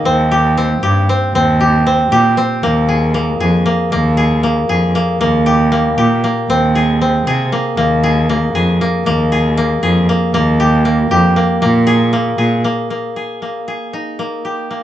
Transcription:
Already playing: A#3 D#4 F4 G#4
0.05 D#2 C4
0.31 G4
0.57 C4
0.82 G2 G4
1.09 C4
1.34 D#2 C4
1.61 G4
1.87 C4
2.11 A#2 G4
2.37 C4
2.63 D#2 A#3
2.89 G#4
3.14 A#3
3.40 F2 G#4
3.66 A#3
3.91 D#2 A#3
4.17 G#4
4.43 A#3
4.69 F2 G#4
4.95 A#3
5.21 D#2 A#3
5.46 G4
5.72 A#3
5.98 A#2 G4
6.24 A#3
6.48 D#2 C4
6.75 G#4
7.01 C4
7.26 C3 G#4
7.52 A#3
7.77 D#2 A#3
8.03 G#4
8.29 A#3
8.54 F2 G#4
8.81 A#3
9.05 D#2 A#3
9.32 G#4
9.57 A#3
9.82 F2 G#4
10.09 A#3
10.34 D#2 A#3
10.60 G4
10.85 A#3
11.11 F2 G4
11.36 A#3
11.62 A#2 A#3
11.87 G#4
12.13 A#3
12.38 A#2 G#4
12.64 A#3
12.90 A#3
13.16 G#4
13.42 A#3
13.68 G#4
13.93 D#4
14.19 A#3
14.45 G4
14.71 A#3

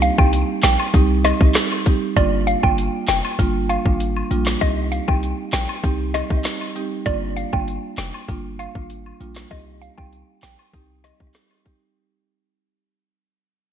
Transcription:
Already playing: C2 G3 C4 D#4 G4
0.02 F5, closed hi-hat, cabasa
0.18 C2 G3 C4 D#4 G4 G5, kick, high woodblock
0.33 closed hi-hat
0.63 A#1 G5, snare, clap, closed hi-hat, cabasa
0.80 high woodblock
0.94 C2 G3 C4 D#4 G4, kick, closed hi-hat
1.25 D#5, snare, closed hi-hat, cabasa, high woodblock
1.41 C2 G3 C4 D#4 G4, kick
1.55 cross-stick, snare, clap, closed hi-hat
1.72 high woodblock
1.86 G3 C4 D#4 G4, kick, closed hi-hat, cabasa
2.16 G1 G3 A#3 D4 F4 D5, kick, closed hi-hat, high woodblock
2.47 F5, closed hi-hat, cabasa
2.63 G1 G3 A#3 D4 F4 G5, kick, high woodblock
2.78 closed hi-hat
3.08 F1 G5, snare, clap, closed hi-hat, cabasa
3.25 high woodblock
3.39 G1 G3 A#3 D4 F4, kick, closed hi-hat
3.69 F5, closed hi-hat, cabasa, high woodblock
3.86 G#1 G3 A#3 D4 F4, kick
4.00 closed hi-hat
4.16 high woodblock
4.31 A#1 G3 A#3 D4 F4, closed hi-hat, cabasa
4.46 snare, clap
4.61 C2 G3 C4 D#4 G4 D#5, kick, closed hi-hat, high woodblock
4.92 F5, closed hi-hat, cabasa
5.08 C2 G3 C4 D#4 G4 G5, kick, high woodblock
5.23 closed hi-hat
5.53 A#1 G5, snare, clap, closed hi-hat, cabasa
5.69 high woodblock
5.84 C2 G3 C4 D#4 G4, kick, closed hi-hat
6.14 D#5, snare, closed hi-hat, cabasa, high woodblock
6.30 C2 G3 C4 D#4 G4, kick
6.45 snare, clap, closed hi-hat
6.61 high woodblock
6.76 G3 C4 D#4 G4, closed hi-hat, cabasa
7.06 G1 G3 A#3 D4 F4 D5, kick, closed hi-hat, high woodblock
7.37 F5, closed hi-hat, cabasa
7.53 G1 G3 A#3 D4 F4 G5, kick, high woodblock
7.68 closed hi-hat
7.98 F1 G5, snare, clap, closed hi-hat, cabasa
8.14 high woodblock
8.28 G1 G3 A#3 D4 F4, kick, closed hi-hat
8.59 F5, closed hi-hat, cabasa, high woodblock
8.75 G#1 G3 A#3 D4 F4, kick
8.90 closed hi-hat
9.06 high woodblock
9.20 A#1 G3 A#3 D4 F4, closed hi-hat, cabasa
9.36 snare, clap
9.51 C2 G3 C4 D#4 G4 D#5, kick, closed hi-hat, high woodblock
9.82 F5, closed hi-hat, cabasa
9.98 C2 G3 C4 D#4 G4 G5, kick, high woodblock
10.13 closed hi-hat
10.43 A#1 G5, snare, clap, closed hi-hat, cabasa
10.59 high woodblock
10.73 C2 G3 C4 D#4 G4, kick, closed hi-hat
11.04 D#5, snare, closed hi-hat, cabasa, high woodblock
11.20 C2 G3 C4 D#4 G4, kick
11.34 cross-stick, snare, clap, closed hi-hat
11.51 high woodblock
11.65 G3 C4 D#4 G4, kick, closed hi-hat, cabasa

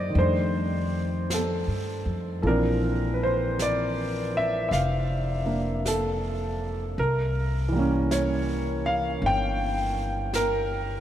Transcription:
Already playing: F#2 D3 A#3 G4 C5 D5 D#5
0.10 D#3
0.14 F2 G3 A3, brush sweep
0.19 D4 C5
1.30 A4, brush sweep, snare, hi-hat pedal
1.67 G2
2.06 F2
2.42 A#1 E3 F3 C4 A4, brush sweep
2.47 D4 A#4
3.14 B4
3.23 C5
3.59 D5, brush sweep, snare, hi-hat pedal
4.37 E5
4.69 F1 E5 F5, brush sweep, snare
5.46 A#3 D4
5.86 A4, brush sweep, snare, hi-hat pedal
6.98 C2 A#4, brush sweep
7.69 E3 G3
7.75 A#3 C#4
8.11 C#5, brush sweep, snare, hi-hat pedal
8.86 F5
9.22 G1, brush sweep
9.26 G5
10.33 A#4, brush sweep, snare, hi-hat pedal

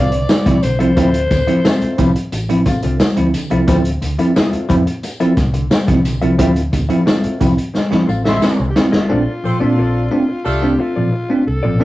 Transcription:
Already playing: C2 C4 F4 A4 D5 F5
0.12 D3, muted hollow-body jazz guitar stroke, closed hi-hat
0.29 muted hollow-body jazz guitar stroke, snare, tambourine
0.46 C2 F3 C4 E4, muted hollow-body jazz guitar stroke, kick, snare, closed hi-hat
0.63 B1 D3 C5, closed hi-hat, tambourine
0.79 C2 F3 C4 E4 F4 A4 C5 E5, closed hi-hat
0.96 D2 F3 C4 E4 F4 A4 E5, kick, closed hi-hat, tambourine
1.14 closed hi-hat
1.30 D2 D3, muted hollow-body jazz guitar stroke, kick, closed hi-hat, tambourine
1.47 F3 C4 E4 F4 A4 E5, closed hi-hat
1.65 C4 F4 A4 E5, snare, tambourine
1.82 muted fingered electric bass stroke, closed hi-hat
1.98 C2 F3 C4 E4, muted hollow-body jazz guitar stroke, kick, closed hi-hat, tambourine
2.16 muted hollow-body jazz guitar stroke, closed hi-hat
2.32 A1, muted hollow-body jazz guitar stroke, closed hi-hat, tambourine
2.49 F3 C4 E4, muted hollow-body jazz guitar stroke, closed hi-hat
2.66 C4 F4 A4 F5, kick, closed hi-hat, tambourine
2.83 C2 D3 C4 F4 A4 E5, closed hi-hat
3.00 muted fingered electric bass stroke, snare, tambourine
3.17 D2 F3 C4 E4, muted hollow-body jazz guitar stroke, closed hi-hat
3.34 D3, closed hi-hat, tambourine
3.51 C2 F3 C4 E4 F4 A4 E5, closed hi-hat
3.67 D2 F3 C4 E4 F4 A4 E5, kick, closed hi-hat, tambourine
3.85 closed hi-hat
4.02 D2 D3, muted hollow-body jazz guitar stroke, closed hi-hat, tambourine
4.19 F3 C4 E4 F4 A4 E5, closed hi-hat
4.36 B3 E4 G#4 D#5, snare, tambourine
4.49 C4 F4 A4 E5
4.53 muted fingered electric bass stroke, closed hi-hat
4.69 F2 F3 C4 E4, muted hollow-body jazz guitar stroke, kick, closed hi-hat
4.86 muted hollow-body jazz guitar stroke, closed hi-hat
5.03 muted hollow-body jazz guitar stroke, closed hi-hat, tambourine
5.20 F3 C4 E4 F4 A4 E5, closed hi-hat
5.37 C2, muted hollow-body jazz guitar stroke, kick, snare, closed hi-hat, tambourine
5.54 D3, muted hollow-body jazz guitar stroke, closed hi-hat
5.70 muted hollow-body jazz guitar stroke, snare, tambourine
5.88 C2 F3 C4 E4, muted hollow-body jazz guitar stroke, kick, snare, closed hi-hat
6.05 B1 D3, closed hi-hat, tambourine
6.21 C2 F3 C4 E4 F4 A4 E5, closed hi-hat
6.38 D2 F3 C4 E4 F4 A4 E5, kick, closed hi-hat
6.56 closed hi-hat
6.72 D2 D3, muted hollow-body jazz guitar stroke, kick, closed hi-hat, tambourine
6.89 F3 C4 E4 F4 A4 E5, closed hi-hat
7.06 C4 F4 A4 E5, snare, tambourine
7.24 muted fingered electric bass stroke, closed hi-hat
7.40 C2 F3 C4 E4, muted hollow-body jazz guitar stroke, kick, closed hi-hat, tambourine
7.57 muted hollow-body jazz guitar stroke, closed hi-hat
7.74 muted hollow-body jazz guitar stroke, snare, tambourine
7.91 F3 C4 E4, muted hollow-body jazz guitar stroke, muted fingered electric bass stroke, snare
8.07 A1 C4 F4 A4 F5, tambourine
8.24 D3 C4 E4 F4 A4 C5 E5, snare
8.42 C4 E4, muted fingered electric bass stroke, snare, tambourine
8.58 C2 D3, muted hollow-body jazz guitar stroke
8.70 G4
8.76 C4 E4 F4, snare, tambourine
8.92 G1 C4 F4 A4 E5, snare
9.09 A#1 A3 C4 D4 F4 A4 D5
9.44 A#2 F3 C4 F4 A4 C5, muted hollow-body jazz guitar stroke, muted fingered electric bass stroke
9.60 A#2 A3 C4 D4 F4 A4 D5
9.78 A#1 C4 F4 A4 D5
10.11 A3 C4 D4, muted hollow-body jazz guitar stroke
10.29 muted hollow-body jazz guitar stroke
10.44 C2 A3 D4 F4 G4 A4, muted hollow-body jazz guitar stroke
10.62 A3 C4 D4, muted hollow-body jazz guitar stroke
10.79 C4 F4 A4 E5
10.96 A#2 F3 C4 F4 A4 D5
11.12 muted hollow-body jazz guitar stroke
11.29 A3 C4 D4, muted hollow-body jazz guitar stroke
11.47 C2 A4
11.63 A1 A#2 F3 C4 F4 A4 D5
11.79 A#1 A3 C4 D4 F4 A4

